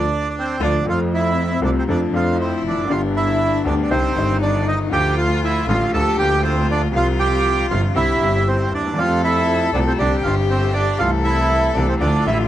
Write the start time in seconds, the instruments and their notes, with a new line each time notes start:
Already playing: bandoneon D4 D5
0.30 bandoneon D5
0.39 bandoneon C4 C5
0.59 double bass D2, upright piano D3 F3 A3, bandoneon D4, cello F4
0.64 bandoneon D5
0.84 double bass F2, upright piano F2 F3 A3 C4, cello C4
0.88 bandoneon F4 F5, upright piano A4
1.14 bandoneon E4 E5
1.61 double bass C2, upright piano C2 C3 F3 A3 C4 A4, bandoneon D4
1.66 bandoneon D5
1.78 bandoneon C4 C5
1.87 double bass F2, upright piano F2 F3 A3 D4 A4, cello D4, bandoneon D4 D5
2.11 double bass F2, upright piano F2 F3 A3 D4, bandoneon F4
2.16 upright piano A4, bandoneon F5
2.37 bandoneon C4 C5, cello E4
2.63 double bass F1, bandoneon D4
2.68 upright piano E2, bandoneon D5
2.77 upright piano F2
2.83 upright piano F#2
2.87 double bass G1, upright piano G1 G2 D3 G3 B3 G4, cello D4, bandoneon F4 F5
3.16 bandoneon E4 E5
3.64 double bass D2, upright piano D2 D3 G3 B3 G4, bandoneon D4 D5
3.83 bandoneon D5
3.89 double bass C2, upright piano C2 C3 D3 G3 C4 D#4, bandoneon C4 C5, cello D#4
4.14 double bass G1, upright piano G1 G2 D#3 G3 C4
4.18 upright piano D#4
4.42 bandoneon D4 D5
4.68 bandoneon D#4 D#5
4.91 double bass D2, upright piano D2 D3 F3 A3 F4, cello F4, bandoneon G4 G5
5.18 bandoneon F4 F5
5.44 bandoneon E4 E5
5.66 double bass A1, upright piano A1 A2 D3 F3 A3 F4, bandoneon F4 F5
5.91 double bass D2, upright piano D2 D3 F3 A#3 F4, cello G4, bandoneon A4 A5
6.17 double bass D2, upright piano D2 D3 F3 A#3, bandoneon G4 G5
6.21 upright piano F4
6.43 bandoneon C4 C5, cello F4
6.71 bandoneon D4 D5
6.92 double bass C2, upright piano C2 C3 F3 G3 F4, cello F4, bandoneon F5
6.97 bandoneon F4
7.19 bandoneon G4 G5
7.70 double bass G1, upright piano G1 G2 C3 F3 G3 F4, bandoneon F4 F5
7.95 double bass C2, upright piano C2 C3 D3 G3 C4 E4, bandoneon E4 E5, cello G4
8.19 double bass G1, upright piano G1 G2 D3 G3 C4
8.25 upright piano E4
8.48 bandoneon C4 C5
8.71 double bass D#2, bandoneon D4 D5
8.80 upright piano D2
8.86 upright piano D#2
8.94 upright piano E2 F3, double bass F2, cello A4
8.98 upright piano F2 F3 A3 C4 G4, bandoneon F4 F5
9.24 bandoneon E4 E5
9.72 double bass C2, upright piano C2 C3 F3 A3 C4 G4, bandoneon D4 D5
9.87 bandoneon C4 C5
9.97 double bass C2, upright piano C2 C3 D3 G3 C4 G4, bandoneon D4 D5, cello G4
10.17 bandoneon G5
10.22 double bass G1, upright piano G1 G2 D3 G3 C4, bandoneon F4 F5
10.28 upright piano G4
10.50 bandoneon C4 C5
10.73 bandoneon D4 D5
10.99 double bass C2, upright piano C2 C3 E3 A3 E4, bandoneon F4 F5, cello A4
11.24 bandoneon E4 E5
11.74 double bass C2, upright piano C2 C3 E3 A3 E4, bandoneon D4 D5
11.89 bandoneon C4 C5
11.99 double bass D2, upright piano D2 D3 F3 A3 E4, bandoneon D4 D5, cello F4
12.25 double bass A1, upright piano A1 A2 D3 F3 A3, bandoneon E4 E5
12.29 upright piano E5